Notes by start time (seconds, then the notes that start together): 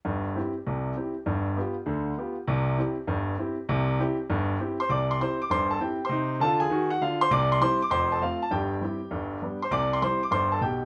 0.05 G1 G2
0.35 C4 E4 G4
0.67 C2 C3
0.96 C4 E4 G4
1.26 G1 G2
1.57 B3 F4 G4
1.86 D2 D3
2.17 B3 F4 G4
2.48 C2 C3
2.78 C4 E4 G4
3.07 G1 G2
3.38 C4 E4 G4
3.69 C2 C3
3.99 C4 E4 G4
4.30 G1 G2
4.59 C4 E4 G4
4.80 C5 C6
4.89 C2 C3 D5 D6
5.11 C6
5.21 C4 E4 G4 C5 C6
5.42 D6
5.50 G1 G2 C5 C6
5.71 A4 A5
5.80 C4 E4 G4 G5
6.05 C5 C6
6.09 C3 D#4
6.40 D3 F4 A4 A5
6.60 G#4 G#5
6.70 D#3 F#4
6.90 F#4 F#5
7.01 D3 F4 F5
7.21 C5 C6
7.31 C2 C3 D5 D6
7.52 C6
7.61 G3 C4 E4 C5 C6
7.82 D6
7.90 F1 F2 C5 C6
8.12 A4 A5
8.21 A3 C4 F4 F5
8.42 A5
8.51 G1 G2 G4 G5
8.81 G3 C4 E4
9.11 G1 G2
9.42 G3 B3 D4
9.62 C5 C6
9.71 C2 C3 D5 D6
9.93 C6
10.02 G3 C4 E4 C5 C6
10.23 D6
10.31 G1 G2 C5 C6
10.52 A4 A5
10.61 B1 B2 G4 G5